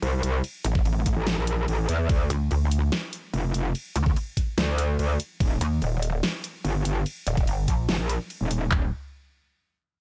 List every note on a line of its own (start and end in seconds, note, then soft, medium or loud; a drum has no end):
0.02 0.22 C2 loud
0.02 ride soft
0.23 0.42 C2 medium
0.23 closed hi-hat medium
0.44 ride medium
0.65 0.84 A1 loud
0.65 closed hi-hat medium
0.75 kick loud
0.85 1.15 A1 loud
0.85 ride soft
1.06 kick medium
1.06 closed hi-hat medium
1.17 1.36 A1 medium
1.27 snare loud
1.27 ride medium
1.37 1.66 A#1 loud
1.47 closed hi-hat medium
1.68 1.87 A1 loud
1.68 ride soft
1.89 2.08 E2 medium
1.89 closed hi-hat medium
2.09 2.28 D2 medium
2.09 kick loud
2.09 ride medium
2.30 2.49 D2 loud
2.30 closed hi-hat medium
2.51 2.91 D2 loud
2.51 ride soft
2.71 closed hi-hat medium
2.92 snare loud
2.92 ride medium
3.13 closed hi-hat medium
3.34 3.53 F1 loud
3.34 ride soft
3.54 3.73 F1 loud
3.54 closed hi-hat medium
3.75 ride medium
3.96 4.15 D2 medium
3.96 closed hi-hat medium
4.06 kick loud
4.16 ride soft
4.37 kick medium
4.37 closed hi-hat medium
4.58 4.97 D2 loud
4.58 snare loud
4.58 ride medium
4.78 closed hi-hat medium
4.99 5.18 D2 loud
4.99 ride soft
5.20 closed hi-hat medium
5.40 5.59 D#1 loud
5.40 kick loud
5.40 ride medium
5.61 5.80 D#2 medium
5.61 closed hi-hat medium
5.82 6.22 D#1 loud
5.82 ride soft
6.02 closed hi-hat medium
6.23 snare loud
6.23 ride medium
6.44 closed hi-hat medium
6.65 6.84 G1 loud
6.65 ride medium
6.85 7.04 G1 loud
6.85 closed hi-hat medium
7.06 ride medium
7.27 7.46 D#1 medium
7.27 closed hi-hat medium
7.37 kick loud
7.37 closed hi-hat soft
7.47 7.66 G1 loud
7.47 ride medium
7.68 7.87 A#1 loud
7.68 kick medium
7.68 closed hi-hat medium
7.89 7.98 G1 medium
7.89 snare loud
7.89 ride medium
7.99 8.18 A#1 medium
8.09 closed hi-hat medium
8.30 ride medium
8.41 8.70 D#1 loud
8.51 closed hi-hat medium
8.71 8.91 D1 loud
8.71 kick loud
8.71 clap medium
8.71 floor tom loud